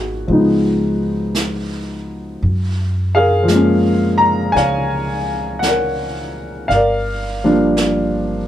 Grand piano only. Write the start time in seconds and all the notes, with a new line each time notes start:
Already playing: F#3 A#3 B3 D#4 F#4 G#4
0.28 F3 G#3 B3
0.32 D#4
3.15 G#4 A#4 F5
3.43 F3
3.48 G#3 A#3
3.55 C#4
4.18 A#5
4.52 G#5
4.56 C#5 F5
5.59 F#5
5.66 A#4 C#5
6.68 F5
6.74 A#4 D5
7.44 F3 G3 A#3 D4